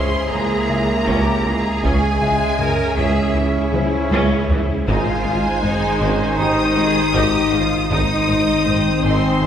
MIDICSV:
0, 0, Header, 1, 14, 480
1, 0, Start_track
1, 0, Tempo, 759494
1, 1160, Time_signature, 4, 2, 24, 8
1, 5983, End_track
2, 0, Start_track
2, 0, Title_t, "Violin section"
2, 0, Program_c, 0, 48
2, 0, Note_on_c, 0, 84, 97
2, 194, Note_off_c, 0, 84, 0
2, 199, Note_on_c, 0, 82, 85
2, 1159, Note_on_c, 0, 80, 111
2, 1160, Note_off_c, 0, 82, 0
2, 1865, Note_off_c, 0, 80, 0
2, 1884, Note_on_c, 0, 76, 80
2, 2353, Note_off_c, 0, 76, 0
2, 3072, Note_on_c, 0, 80, 100
2, 4011, Note_off_c, 0, 80, 0
2, 4046, Note_on_c, 0, 87, 115
2, 4984, Note_off_c, 0, 87, 0
2, 5006, Note_on_c, 0, 87, 108
2, 5709, Note_off_c, 0, 87, 0
2, 5726, Note_on_c, 0, 84, 90
2, 5958, Note_off_c, 0, 84, 0
2, 5983, End_track
3, 0, Start_track
3, 0, Title_t, "Violin section"
3, 0, Program_c, 1, 48
3, 0, Note_on_c, 1, 84, 103
3, 196, Note_on_c, 1, 82, 103
3, 201, Note_off_c, 1, 84, 0
3, 1158, Note_off_c, 1, 82, 0
3, 1168, Note_on_c, 1, 80, 127
3, 1870, Note_off_c, 1, 80, 0
3, 1890, Note_on_c, 1, 76, 112
3, 2365, Note_off_c, 1, 76, 0
3, 3083, Note_on_c, 1, 80, 127
3, 4016, Note_off_c, 1, 80, 0
3, 4046, Note_on_c, 1, 87, 126
3, 4993, Note_off_c, 1, 87, 0
3, 5001, Note_on_c, 1, 87, 127
3, 5706, Note_off_c, 1, 87, 0
3, 5715, Note_on_c, 1, 84, 116
3, 5953, Note_off_c, 1, 84, 0
3, 5960, Note_on_c, 1, 80, 115
3, 5983, Note_off_c, 1, 80, 0
3, 5983, End_track
4, 0, Start_track
4, 0, Title_t, "Felt piano"
4, 0, Program_c, 2, 0
4, 0, Control_c, 2, 64, 127
4, 0, Note_on_c, 2, 84, 55
4, 0, Note_on_c, 2, 87, 49
4, 440, Note_on_c, 2, 76, 74
4, 652, Note_off_c, 2, 87, 0
4, 1133, Note_off_c, 2, 84, 0
4, 1394, Note_off_c, 2, 76, 0
4, 1403, Note_on_c, 2, 76, 75
4, 2368, Note_on_c, 2, 72, 64
4, 2817, Note_off_c, 2, 76, 0
4, 3093, Control_c, 2, 64, 0
4, 3204, Control_c, 2, 64, 127
4, 3779, Note_off_c, 2, 72, 0
4, 4049, Note_on_c, 2, 67, 61
4, 4055, Note_on_c, 2, 79, 75
4, 5460, Note_off_c, 2, 67, 0
4, 5463, Note_off_c, 2, 79, 0
4, 5723, Note_on_c, 2, 80, 58
4, 5983, Note_off_c, 2, 80, 0
4, 5983, End_track
5, 0, Start_track
5, 0, Title_t, "Cello section"
5, 0, Program_c, 3, 48
5, 0, Note_on_c, 3, 68, 88
5, 680, Note_off_c, 3, 68, 0
5, 681, Note_on_c, 3, 67, 84
5, 921, Note_off_c, 3, 67, 0
5, 922, Note_on_c, 3, 68, 92
5, 1641, Note_off_c, 3, 68, 0
5, 1646, Note_on_c, 3, 70, 97
5, 1878, Note_off_c, 3, 70, 0
5, 1884, Note_on_c, 3, 68, 89
5, 2118, Note_off_c, 3, 68, 0
5, 2125, Note_on_c, 3, 64, 80
5, 3083, Note_off_c, 3, 64, 0
5, 3085, Note_on_c, 3, 65, 98
5, 3553, Note_off_c, 3, 65, 0
5, 3562, Note_on_c, 3, 63, 90
5, 3796, Note_off_c, 3, 63, 0
5, 3803, Note_on_c, 3, 61, 86
5, 4042, Note_off_c, 3, 61, 0
5, 4043, Note_on_c, 3, 63, 87
5, 4278, Note_on_c, 3, 68, 100
5, 4282, Note_off_c, 3, 63, 0
5, 4519, Note_off_c, 3, 68, 0
5, 4520, Note_on_c, 3, 67, 89
5, 4755, Note_off_c, 3, 67, 0
5, 4762, Note_on_c, 3, 65, 89
5, 4999, Note_on_c, 3, 63, 95
5, 5001, Note_off_c, 3, 65, 0
5, 5470, Note_off_c, 3, 63, 0
5, 5478, Note_on_c, 3, 60, 73
5, 5714, Note_off_c, 3, 60, 0
5, 5715, Note_on_c, 3, 63, 74
5, 5957, Note_on_c, 3, 65, 78
5, 5958, Note_off_c, 3, 63, 0
5, 5983, Note_off_c, 3, 65, 0
5, 5983, End_track
6, 0, Start_track
6, 0, Title_t, "Ambient pad"
6, 0, Program_c, 4, 92
6, 0, Note_on_c, 4, 49, 80
6, 0, Note_on_c, 4, 56, 68
6, 0, Note_on_c, 4, 76, 80
6, 1134, Note_off_c, 4, 56, 0
6, 1161, Note_off_c, 4, 76, 0
6, 1162, Note_off_c, 4, 49, 0
6, 1169, Note_on_c, 4, 61, 86
6, 1169, Note_on_c, 4, 68, 86
6, 1170, Note_on_c, 4, 76, 82
6, 1171, Note_on_c, 4, 56, 87
6, 3060, Note_off_c, 4, 56, 0
6, 3060, Note_off_c, 4, 61, 0
6, 3060, Note_off_c, 4, 68, 0
6, 3060, Note_off_c, 4, 76, 0
6, 3085, Note_on_c, 4, 56, 80
6, 3087, Note_on_c, 4, 72, 84
6, 3088, Note_on_c, 4, 51, 89
6, 3089, Note_on_c, 4, 75, 84
6, 4977, Note_off_c, 4, 56, 0
6, 4992, Note_off_c, 4, 51, 0
6, 4993, Note_off_c, 4, 75, 0
6, 4998, Note_on_c, 4, 56, 86
6, 4999, Note_on_c, 4, 51, 91
6, 5000, Note_on_c, 4, 60, 81
6, 5001, Note_on_c, 4, 75, 81
6, 5004, Note_off_c, 4, 72, 0
6, 5983, Note_off_c, 4, 51, 0
6, 5983, Note_off_c, 4, 56, 0
6, 5983, Note_off_c, 4, 60, 0
6, 5983, Note_off_c, 4, 75, 0
6, 5983, End_track
7, 0, Start_track
7, 0, Title_t, "Viola section"
7, 0, Program_c, 5, 48
7, 0, Note_on_c, 5, 61, 78
7, 0, Note_on_c, 5, 64, 75
7, 182, Note_off_c, 5, 61, 0
7, 200, Note_on_c, 5, 52, 61
7, 251, Note_off_c, 5, 52, 0
7, 441, Note_on_c, 5, 56, 72
7, 492, Note_off_c, 5, 56, 0
7, 679, Note_on_c, 5, 61, 93
7, 903, Note_off_c, 5, 61, 0
7, 919, Note_on_c, 5, 52, 83
7, 970, Note_off_c, 5, 52, 0
7, 1132, Note_off_c, 5, 64, 0
7, 1161, Note_on_c, 5, 68, 86
7, 1163, Note_on_c, 5, 61, 85
7, 1385, Note_off_c, 5, 61, 0
7, 1398, Note_on_c, 5, 52, 51
7, 1449, Note_off_c, 5, 52, 0
7, 1641, Note_on_c, 5, 56, 79
7, 1691, Note_off_c, 5, 56, 0
7, 1881, Note_on_c, 5, 61, 78
7, 2104, Note_off_c, 5, 61, 0
7, 2120, Note_on_c, 5, 52, 69
7, 2170, Note_off_c, 5, 52, 0
7, 2361, Note_on_c, 5, 56, 78
7, 2412, Note_off_c, 5, 56, 0
7, 2602, Note_on_c, 5, 61, 112
7, 2824, Note_off_c, 5, 61, 0
7, 2844, Note_on_c, 5, 52, 85
7, 2894, Note_off_c, 5, 52, 0
7, 3055, Note_off_c, 5, 68, 0
7, 3085, Note_on_c, 5, 63, 95
7, 3085, Note_on_c, 5, 72, 90
7, 3306, Note_off_c, 5, 63, 0
7, 3326, Note_on_c, 5, 56, 57
7, 3376, Note_off_c, 5, 56, 0
7, 3567, Note_on_c, 5, 60, 60
7, 3617, Note_off_c, 5, 60, 0
7, 3807, Note_on_c, 5, 63, 87
7, 4027, Note_off_c, 5, 63, 0
7, 4042, Note_on_c, 5, 56, 78
7, 4093, Note_off_c, 5, 56, 0
7, 4285, Note_on_c, 5, 60, 86
7, 4336, Note_off_c, 5, 60, 0
7, 4519, Note_on_c, 5, 63, 102
7, 4743, Note_off_c, 5, 63, 0
7, 4757, Note_on_c, 5, 56, 87
7, 4808, Note_off_c, 5, 56, 0
7, 4989, Note_off_c, 5, 72, 0
7, 4995, Note_on_c, 5, 63, 97
7, 4996, Note_on_c, 5, 72, 85
7, 5221, Note_off_c, 5, 63, 0
7, 5240, Note_on_c, 5, 56, 58
7, 5291, Note_off_c, 5, 56, 0
7, 5477, Note_on_c, 5, 60, 70
7, 5528, Note_off_c, 5, 60, 0
7, 5719, Note_on_c, 5, 63, 74
7, 5943, Note_off_c, 5, 63, 0
7, 5961, Note_on_c, 5, 56, 69
7, 5983, Note_off_c, 5, 56, 0
7, 5983, Note_off_c, 5, 72, 0
7, 5983, End_track
8, 0, Start_track
8, 0, Title_t, "French horn section"
8, 0, Program_c, 6, 60
8, 0, Note_on_c, 6, 72, 95
8, 199, Note_off_c, 6, 72, 0
8, 203, Note_on_c, 6, 58, 86
8, 1055, Note_off_c, 6, 58, 0
8, 1162, Note_on_c, 6, 56, 102
8, 1867, Note_off_c, 6, 56, 0
8, 1877, Note_on_c, 6, 52, 85
8, 2349, Note_off_c, 6, 52, 0
8, 3079, Note_on_c, 6, 56, 111
8, 4015, Note_off_c, 6, 56, 0
8, 4037, Note_on_c, 6, 63, 110
8, 4988, Note_off_c, 6, 63, 0
8, 4995, Note_on_c, 6, 63, 116
8, 5703, Note_off_c, 6, 63, 0
8, 5714, Note_on_c, 6, 60, 107
8, 5955, Note_on_c, 6, 56, 104
8, 5957, Note_off_c, 6, 60, 0
8, 5983, Note_off_c, 6, 56, 0
8, 5983, End_track
9, 0, Start_track
9, 0, Title_t, "Trombone section"
9, 0, Program_c, 7, 61
9, 0, Note_on_c, 7, 49, 90
9, 0, Note_on_c, 7, 56, 89
9, 1132, Note_off_c, 7, 49, 0
9, 1133, Note_off_c, 7, 56, 0
9, 1156, Note_on_c, 7, 49, 92
9, 1160, Note_on_c, 7, 61, 101
9, 2981, Note_off_c, 7, 49, 0
9, 2981, Note_off_c, 7, 61, 0
9, 3089, Note_on_c, 7, 63, 108
9, 3091, Note_on_c, 7, 51, 106
9, 4979, Note_off_c, 7, 63, 0
9, 4981, Note_off_c, 7, 51, 0
9, 5001, Note_on_c, 7, 51, 105
9, 5002, Note_on_c, 7, 60, 96
9, 5983, Note_off_c, 7, 51, 0
9, 5983, Note_off_c, 7, 60, 0
9, 5983, End_track
10, 0, Start_track
10, 0, Title_t, "Analog synth bass"
10, 0, Program_c, 8, 38
10, 0, Note_on_c, 8, 37, 81
10, 102, Note_off_c, 8, 37, 0
10, 199, Note_on_c, 8, 37, 68
10, 343, Note_off_c, 8, 37, 0
10, 435, Note_on_c, 8, 49, 73
10, 581, Note_off_c, 8, 49, 0
10, 677, Note_on_c, 8, 37, 93
10, 822, Note_off_c, 8, 37, 0
10, 919, Note_on_c, 8, 37, 79
10, 1064, Note_off_c, 8, 37, 0
10, 1157, Note_on_c, 8, 37, 112
10, 1302, Note_off_c, 8, 37, 0
10, 1399, Note_on_c, 8, 49, 76
10, 1543, Note_off_c, 8, 49, 0
10, 1635, Note_on_c, 8, 49, 73
10, 1781, Note_off_c, 8, 49, 0
10, 1877, Note_on_c, 8, 37, 84
10, 2022, Note_off_c, 8, 37, 0
10, 2115, Note_on_c, 8, 37, 62
10, 2261, Note_off_c, 8, 37, 0
10, 2354, Note_on_c, 8, 49, 81
10, 2500, Note_off_c, 8, 49, 0
10, 2597, Note_on_c, 8, 37, 106
10, 2742, Note_off_c, 8, 37, 0
10, 2835, Note_on_c, 8, 37, 77
10, 2981, Note_off_c, 8, 37, 0
10, 3079, Note_on_c, 8, 44, 107
10, 3224, Note_off_c, 8, 44, 0
10, 3318, Note_on_c, 8, 56, 74
10, 3463, Note_off_c, 8, 56, 0
10, 3556, Note_on_c, 8, 56, 74
10, 3701, Note_off_c, 8, 56, 0
10, 3800, Note_on_c, 8, 44, 84
10, 3944, Note_off_c, 8, 44, 0
10, 4043, Note_on_c, 8, 44, 65
10, 4186, Note_off_c, 8, 44, 0
10, 4282, Note_on_c, 8, 56, 69
10, 4426, Note_off_c, 8, 56, 0
10, 4519, Note_on_c, 8, 44, 105
10, 4663, Note_off_c, 8, 44, 0
10, 4762, Note_on_c, 8, 44, 72
10, 4906, Note_off_c, 8, 44, 0
10, 4995, Note_on_c, 8, 44, 110
10, 5141, Note_off_c, 8, 44, 0
10, 5237, Note_on_c, 8, 56, 69
10, 5382, Note_off_c, 8, 56, 0
10, 5477, Note_on_c, 8, 56, 73
10, 5622, Note_off_c, 8, 56, 0
10, 5715, Note_on_c, 8, 44, 95
10, 5861, Note_off_c, 8, 44, 0
10, 5952, Note_on_c, 8, 44, 73
10, 5983, Note_off_c, 8, 44, 0
10, 5983, End_track
11, 0, Start_track
11, 0, Title_t, "Sub bass"
11, 0, Program_c, 10, 38
11, 0, Note_on_c, 10, 37, 73
11, 1154, Note_off_c, 10, 37, 0
11, 1157, Note_on_c, 10, 37, 78
11, 3081, Note_on_c, 10, 32, 75
11, 3090, Note_off_c, 10, 37, 0
11, 4994, Note_off_c, 10, 32, 0
11, 4998, Note_on_c, 10, 32, 84
11, 5983, Note_off_c, 10, 32, 0
11, 5983, End_track
12, 0, Start_track
12, 0, Title_t, "Double bass section"
12, 0, Program_c, 11, 48
12, 196, Note_on_c, 11, 37, 65
12, 247, Note_off_c, 11, 37, 0
12, 437, Note_on_c, 11, 37, 56
12, 487, Note_off_c, 11, 37, 0
12, 680, Note_on_c, 11, 37, 81
12, 731, Note_off_c, 11, 37, 0
12, 916, Note_on_c, 11, 37, 72
12, 966, Note_off_c, 11, 37, 0
12, 1161, Note_on_c, 11, 37, 92
12, 1212, Note_off_c, 11, 37, 0
12, 1399, Note_on_c, 11, 37, 69
12, 1450, Note_off_c, 11, 37, 0
12, 1643, Note_on_c, 11, 37, 79
12, 1693, Note_off_c, 11, 37, 0
12, 1878, Note_on_c, 11, 37, 87
12, 1929, Note_off_c, 11, 37, 0
12, 2123, Note_on_c, 11, 37, 70
12, 2173, Note_off_c, 11, 37, 0
12, 2362, Note_on_c, 11, 37, 69
12, 2413, Note_off_c, 11, 37, 0
12, 2600, Note_on_c, 11, 37, 87
12, 2651, Note_off_c, 11, 37, 0
12, 2842, Note_on_c, 11, 37, 70
12, 2892, Note_off_c, 11, 37, 0
12, 3087, Note_on_c, 11, 32, 101
12, 3137, Note_off_c, 11, 32, 0
12, 3324, Note_on_c, 11, 32, 72
12, 3374, Note_off_c, 11, 32, 0
12, 3564, Note_on_c, 11, 32, 65
12, 3615, Note_off_c, 11, 32, 0
12, 3804, Note_on_c, 11, 32, 86
12, 3854, Note_off_c, 11, 32, 0
12, 4041, Note_on_c, 11, 32, 78
12, 4091, Note_off_c, 11, 32, 0
12, 4279, Note_on_c, 11, 32, 61
12, 4330, Note_off_c, 11, 32, 0
12, 4516, Note_on_c, 11, 32, 91
12, 4567, Note_off_c, 11, 32, 0
12, 4753, Note_on_c, 11, 32, 82
12, 4804, Note_off_c, 11, 32, 0
12, 4991, Note_on_c, 11, 32, 103
12, 5042, Note_off_c, 11, 32, 0
12, 5237, Note_on_c, 11, 32, 72
12, 5288, Note_off_c, 11, 32, 0
12, 5473, Note_on_c, 11, 32, 69
12, 5523, Note_off_c, 11, 32, 0
12, 5712, Note_on_c, 11, 32, 80
12, 5762, Note_off_c, 11, 32, 0
12, 5957, Note_on_c, 11, 32, 68
12, 5983, Note_off_c, 11, 32, 0
12, 5983, End_track
13, 0, Start_track
13, 0, Title_t, "Tuba"
13, 0, Program_c, 12, 58
13, 198, Note_on_c, 12, 37, 63
13, 294, Note_off_c, 12, 37, 0
13, 439, Note_on_c, 12, 37, 64
13, 535, Note_off_c, 12, 37, 0
13, 681, Note_on_c, 12, 37, 100
13, 777, Note_off_c, 12, 37, 0
13, 919, Note_on_c, 12, 37, 63
13, 1015, Note_off_c, 12, 37, 0
13, 1161, Note_on_c, 12, 37, 102
13, 1257, Note_off_c, 12, 37, 0
13, 1399, Note_on_c, 12, 37, 66
13, 1495, Note_off_c, 12, 37, 0
13, 1644, Note_on_c, 12, 37, 72
13, 1739, Note_off_c, 12, 37, 0
13, 1882, Note_on_c, 12, 37, 99
13, 1978, Note_off_c, 12, 37, 0
13, 2122, Note_on_c, 12, 37, 73
13, 2218, Note_off_c, 12, 37, 0
13, 2364, Note_on_c, 12, 37, 75
13, 2459, Note_off_c, 12, 37, 0
13, 2600, Note_on_c, 12, 37, 113
13, 2696, Note_off_c, 12, 37, 0
13, 2841, Note_on_c, 12, 37, 72
13, 2937, Note_off_c, 12, 37, 0
13, 3085, Note_on_c, 12, 32, 104
13, 3180, Note_off_c, 12, 32, 0
13, 3324, Note_on_c, 12, 32, 68
13, 3420, Note_off_c, 12, 32, 0
13, 3564, Note_on_c, 12, 32, 72
13, 3659, Note_off_c, 12, 32, 0
13, 3802, Note_on_c, 12, 32, 102
13, 3898, Note_off_c, 12, 32, 0
13, 4036, Note_on_c, 12, 32, 67
13, 4133, Note_off_c, 12, 32, 0
13, 4277, Note_on_c, 12, 32, 74
13, 4373, Note_off_c, 12, 32, 0
13, 4515, Note_on_c, 12, 32, 110
13, 4612, Note_off_c, 12, 32, 0
13, 4758, Note_on_c, 12, 32, 68
13, 4854, Note_off_c, 12, 32, 0
13, 4999, Note_on_c, 12, 32, 92
13, 5096, Note_off_c, 12, 32, 0
13, 5244, Note_on_c, 12, 32, 62
13, 5339, Note_off_c, 12, 32, 0
13, 5482, Note_on_c, 12, 32, 68
13, 5578, Note_off_c, 12, 32, 0
13, 5721, Note_on_c, 12, 32, 86
13, 5817, Note_off_c, 12, 32, 0
13, 5961, Note_on_c, 12, 32, 65
13, 5983, Note_off_c, 12, 32, 0
13, 5983, End_track
14, 0, Start_track
14, 0, Title_t, "Taiko and cinematic ensemble drums"
14, 681, Note_on_c, 9, 41, 74
14, 744, Note_off_c, 9, 41, 0
14, 1161, Note_on_c, 9, 41, 96
14, 1224, Note_off_c, 9, 41, 0
14, 1644, Note_on_c, 9, 45, 69
14, 1707, Note_off_c, 9, 45, 0
14, 2365, Note_on_c, 9, 48, 92
14, 2428, Note_off_c, 9, 48, 0
14, 2604, Note_on_c, 9, 48, 85
14, 2667, Note_off_c, 9, 48, 0
14, 2845, Note_on_c, 9, 43, 107
14, 2908, Note_off_c, 9, 43, 0
14, 3085, Note_on_c, 9, 41, 85
14, 3148, Note_off_c, 9, 41, 0
14, 3562, Note_on_c, 9, 45, 67
14, 3625, Note_off_c, 9, 45, 0
14, 4524, Note_on_c, 9, 41, 80
14, 4587, Note_off_c, 9, 41, 0
14, 4999, Note_on_c, 9, 41, 100
14, 5062, Note_off_c, 9, 41, 0
14, 5476, Note_on_c, 9, 45, 70
14, 5539, Note_off_c, 9, 45, 0
14, 5983, End_track
0, 0, End_of_file